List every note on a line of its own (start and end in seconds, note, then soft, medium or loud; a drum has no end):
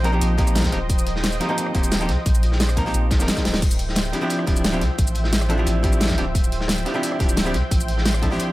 0.00 0.20 A#1 medium
0.00 3.58 F3 medium
0.00 0.11 F3 medium
0.00 3.58 C5 medium
0.00 3.58 D#5 medium
0.00 3.58 G5 medium
0.04 0.11 A#3 medium
0.04 0.11 C4 medium
0.04 0.11 D#4 medium
0.04 0.11 A#4 medium
0.04 closed hi-hat medium
0.12 0.36 F3 medium
0.12 0.36 A#3 medium
0.12 0.36 C4 medium
0.12 0.37 D#4 medium
0.12 0.37 G4 medium
0.21 0.71 A#1 medium
0.21 closed hi-hat medium
0.21 shaker medium
0.38 0.70 F3 loud
0.38 0.70 A#3 medium
0.38 0.71 C4 medium
0.38 0.71 D#4 medium
0.38 0.71 G4 loud
0.38 kick loud
0.38 closed hi-hat medium
0.47 cross-stick soft
0.47 shaker medium
0.55 snare medium
0.55 snare loud
0.55 closed hi-hat medium
0.55 shaker medium
0.60 snare medium
0.60 closed hi-hat medium
0.64 kick medium
0.64 snare loud
0.64 closed hi-hat medium
0.64 shaker soft
0.72 1.39 D#1 medium
0.72 0.78 F3 medium
0.72 0.78 A#3 medium
0.72 0.78 C4 medium
0.72 0.78 D#4 medium
0.72 0.79 G4 loud
0.72 closed hi-hat medium
0.90 kick loud
0.90 closed hi-hat medium
0.90 shaker medium
0.98 shaker medium
1.07 closed hi-hat medium
1.16 snare medium
1.24 snare loud
1.24 closed hi-hat medium
1.24 shaker medium
1.32 shaker soft
1.40 1.47 F3 medium
1.40 1.47 A#3 medium
1.40 1.47 C4 medium
1.40 1.48 D#4 medium
1.40 1.48 G4 medium
1.40 snare soft
1.40 closed hi-hat medium
1.49 1.72 F3 loud
1.49 1.73 A#3 loud
1.49 1.73 C4 medium
1.49 1.73 D#4 loud
1.49 1.73 G4 loud
1.57 closed hi-hat medium
1.57 closed hi-hat loud
1.57 shaker medium
1.66 cross-stick soft
1.74 2.10 D#1 loud
1.74 1.98 F3 medium
1.74 1.98 A#3 medium
1.74 1.99 C4 medium
1.74 1.99 D#4 medium
1.74 1.99 G4 medium
1.74 kick loud
1.74 closed hi-hat medium
1.83 shaker medium
1.92 snare loud
1.92 closed hi-hat loud
1.92 closed hi-hat medium
1.92 shaker medium
2.00 2.09 F3 medium
2.00 2.09 A#3 medium
2.00 2.10 C4 medium
2.00 2.10 D#4 medium
2.00 2.10 G4 medium
2.00 shaker soft
2.09 2.17 C2 loud
2.09 snare soft
2.09 closed hi-hat medium
2.26 2.93 A#1 medium
2.26 kick loud
2.26 closed hi-hat medium
2.26 closed hi-hat loud
2.26 shaker soft
2.35 shaker medium
2.43 closed hi-hat medium
2.52 snare medium
2.60 snare loud
2.60 closed hi-hat loud
2.60 closed hi-hat medium
2.60 shaker medium
2.69 cross-stick medium
2.69 shaker soft
2.76 2.83 F3 medium
2.76 2.84 A#3 medium
2.76 2.84 C4 medium
2.76 2.84 D#4 medium
2.76 2.84 A#4 medium
2.76 kick medium
2.76 closed hi-hat medium
2.85 3.09 F3 medium
2.85 3.09 A#3 medium
2.85 3.09 C4 medium
2.85 3.10 D#4 medium
2.85 3.10 G4 medium
2.85 snare soft
2.94 3.11 A#1 medium
2.94 closed hi-hat loud
2.94 shaker medium
3.11 3.19 A#1 loud
3.11 kick loud
3.11 snare loud
3.11 closed hi-hat medium
3.11 shaker soft
3.18 3.27 D#1 loud
3.18 3.61 F3 medium
3.18 3.61 A#3 medium
3.18 3.61 C4 medium
3.18 3.62 D#4 medium
3.18 3.62 A#4 medium
3.18 cross-stick soft
3.18 snare medium
3.18 shaker medium
3.28 snare loud
3.28 closed hi-hat loud
3.28 closed hi-hat medium
3.28 shaker medium
3.37 kick medium
3.37 snare loud
3.37 closed hi-hat medium
3.37 shaker soft
3.45 4.12 D1 medium
3.45 snare loud
3.45 snare medium
3.45 closed hi-hat medium
3.53 snare loud
3.53 closed hi-hat medium
3.62 8.52 F3 medium
3.62 8.52 C5 medium
3.62 8.52 E5 medium
3.62 8.52 G5 medium
3.62 kick loud
3.62 closed hi-hat loud
3.62 closed hi-hat medium
3.62 crash medium
3.62 shaker soft
3.71 shaker medium
3.79 closed hi-hat medium
3.89 snare medium
3.95 snare loud
3.95 closed hi-hat medium
3.95 closed hi-hat loud
3.95 shaker soft
4.05 shaker soft
4.12 4.20 F3 medium
4.12 4.20 C4 medium
4.12 4.20 D4 medium
4.12 4.20 E4 medium
4.12 4.20 G4 medium
4.12 snare soft
4.12 closed hi-hat medium
4.21 4.45 F3 loud
4.21 4.45 C4 medium
4.21 4.45 D4 medium
4.21 4.46 E4 medium
4.21 4.46 G4 loud
4.30 closed hi-hat loud
4.30 shaker medium
4.39 cross-stick medium
4.47 4.83 D1 loud
4.47 4.71 F3 medium
4.47 4.71 C4 medium
4.47 4.71 D4 medium
4.47 4.71 E4 medium
4.47 4.72 G4 medium
4.47 kick loud
4.47 closed hi-hat medium
4.56 shaker medium
4.64 snare loud
4.64 closed hi-hat medium
4.64 closed hi-hat loud
4.64 shaker soft
4.72 4.82 F3 medium
4.72 4.82 C4 medium
4.72 4.82 D4 medium
4.72 4.82 E4 medium
4.72 4.83 G4 loud
4.72 shaker soft
4.81 4.89 C2 loud
4.81 snare soft
4.81 closed hi-hat medium
4.98 5.65 A1 medium
4.98 kick loud
4.98 closed hi-hat medium
4.98 shaker soft
5.07 shaker medium
5.15 closed hi-hat medium
5.24 snare medium
5.33 snare loud
5.33 closed hi-hat loud
5.33 shaker soft
5.41 cross-stick medium
5.41 shaker soft
5.49 5.56 F3 medium
5.49 5.56 C4 medium
5.49 5.56 D4 medium
5.49 5.57 E4 medium
5.49 5.57 A4 medium
5.49 closed hi-hat medium
5.58 5.81 F3 medium
5.58 5.82 C4 medium
5.58 5.82 D4 medium
5.58 5.82 E4 medium
5.58 5.82 G4 medium
5.66 6.17 A1 medium
5.66 closed hi-hat medium
5.66 closed hi-hat loud
5.66 shaker soft
5.83 6.15 F3 medium
5.83 6.16 C4 medium
5.83 6.16 D4 medium
5.83 6.16 E4 medium
5.83 6.16 G4 loud
5.83 kick loud
5.83 closed hi-hat medium
5.93 cross-stick soft
5.93 shaker medium
6.00 snare medium
6.00 snare loud
6.00 closed hi-hat medium
6.00 closed hi-hat loud
6.00 shaker soft
6.05 snare medium
6.05 closed hi-hat medium
6.08 kick medium
6.08 snare loud
6.08 closed hi-hat medium
6.08 shaker soft
6.17 6.85 D1 medium
6.17 6.23 F3 medium
6.17 6.23 C4 medium
6.17 6.24 D4 medium
6.17 6.24 E4 medium
6.17 6.24 G4 loud
6.17 closed hi-hat medium
6.35 kick loud
6.35 closed hi-hat medium
6.35 shaker soft
6.44 shaker medium
6.52 closed hi-hat medium
6.61 snare medium
6.68 snare loud
6.68 closed hi-hat medium
6.68 shaker soft
6.78 shaker soft
6.85 6.92 F3 medium
6.85 6.93 C4 medium
6.85 6.93 D4 medium
6.85 6.93 E4 medium
6.85 6.93 G4 medium
6.85 snare soft
6.85 closed hi-hat medium
6.94 7.18 F3 loud
6.94 7.18 C4 medium
6.94 7.18 D4 loud
6.94 7.18 E4 medium
6.94 7.19 G4 loud
7.03 closed hi-hat medium
7.03 shaker soft
7.12 cross-stick soft
7.19 7.56 D1 loud
7.19 7.43 F3 medium
7.19 7.44 C4 medium
7.19 7.44 D4 medium
7.19 7.44 E4 medium
7.19 7.44 G4 medium
7.19 kick loud
7.19 closed hi-hat medium
7.29 shaker medium
7.37 snare loud
7.37 closed hi-hat medium
7.37 shaker soft
7.45 7.55 F3 medium
7.45 7.55 C4 medium
7.45 7.55 D4 medium
7.45 7.55 E4 medium
7.45 7.55 G4 loud
7.45 shaker soft
7.54 7.62 C2 loud
7.54 snare soft
7.54 closed hi-hat medium
7.71 8.38 A1 medium
7.71 kick loud
7.71 closed hi-hat medium
7.71 shaker soft
7.80 shaker medium
7.88 closed hi-hat medium
7.98 snare medium
8.05 snare loud
8.05 closed hi-hat medium
8.05 shaker soft
8.14 cross-stick medium
8.14 shaker soft
8.22 8.29 F3 medium
8.22 8.29 C4 medium
8.22 8.29 D4 medium
8.22 8.29 E4 medium
8.22 8.29 A4 medium
8.22 kick medium
8.22 closed hi-hat medium
8.30 8.52 F3 medium
8.30 8.52 C4 medium
8.30 8.52 D4 medium
8.30 8.52 E4 medium
8.30 8.52 G4 medium
8.30 snare soft
8.39 closed hi-hat medium
8.39 shaker soft